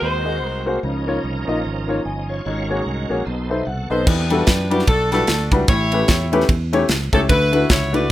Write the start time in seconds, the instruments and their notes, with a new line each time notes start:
Already playing: tonewheel organ G#3 C4 F#4 A#4
0.01 fingered electric bass D#2, saxophone section D#4 F#4 C5, clean electric guitar C5
0.24 grand piano A#3 F#4 G#4 D#5
0.43 fingered electric bass C2
0.48 clean electric guitar A#4
0.66 grand piano A#3 F#4 G#4 C5
0.83 fingered electric bass C#2, grand piano C#3, tonewheel organ F3 C#4 D#4 A#4
1.07 grand piano A#3 D#4 F4 C#5
1.24 fingered electric bass C2
1.47 fingered electric bass A#1, grand piano A#3 D#4 F4 D#5
1.65 fingered electric bass G#1
1.88 grand piano A#3 D#4 F4 C#5
2.05 fingered electric bass G1, tonewheel organ D#5, grand piano G#5
2.29 tonewheel organ F4 C#5, grand piano C#5
2.45 fingered electric bass G#1, grand piano G#2, tonewheel organ G#3 C#4 F#4 A4
2.51 tonewheel organ A#4
2.69 grand piano A#3 F#4 G#4 C#5
2.86 fingered electric bass C2
3.10 fingered electric bass A#1, grand piano A#3 F#4 G#4 C#5
3.25 fingered electric bass B1, grand piano B2, tonewheel organ B3 D#4 A4 C5
3.49 grand piano B3 D#4 A4 C5 E5
3.66 fingered electric bass C2, tonewheel organ A4 F#5, grand piano F#5
3.90 fingered electric bass B1, grand piano B3 D#4 A4 B4 D#5, tonewheel organ C4 A4, saxophone section C5
4.07 fingered electric bass E2, grand piano E3, saxophone section D4 G4 B4, kick, crash
4.30 grand piano G3 D4 E4 F#4 A4, ride
4.47 fingered electric bass F#2, kick, snare, ride
4.70 grand piano G3 D4 E4 F#4 B4, saxophone section G4, ride
4.79 snare
4.87 fingered electric bass B1, saxophone section D4 F#4 A4, kick, ride
5.11 grand piano G3 D4 E4 F#4 B4, saxophone section D4 F#4 A4, snare, ride
5.27 fingered electric bass D2, snare, ride
5.51 fingered electric bass C#2, grand piano G3 D4 E4 F#4 B4, kick, ride
5.68 fingered electric bass A1, grand piano A2, saxophone section E4 G4 C#5, kick, ride
5.92 grand piano A3 C#4 E4 G4 B4, ride
6.08 fingered electric bass E2, kick, snare, ride
6.32 grand piano A3 C#4 E4 G4 B4, ride
6.40 snare
6.49 fingered electric bass E2, kick, ride
6.73 grand piano A3 C#4 E4 G4 C#5, ride
6.89 fingered electric bass C#2, snare, ride
7.12 fingered electric bass C#2, grand piano A3 C#4 E4 G4 C#5, saxophone section A4, kick, ride
7.29 fingered electric bass D2, grand piano D3, saxophone section E4 F#4 B4, kick, ride
7.52 grand piano A3 D4 E4 F#4 B4, ride
7.70 fingered electric bass C#2, saxophone section C#5, kick, snare, ride
7.93 grand piano A3 D4 E4 F#4 B4, saxophone section F#4 B4 D5, ride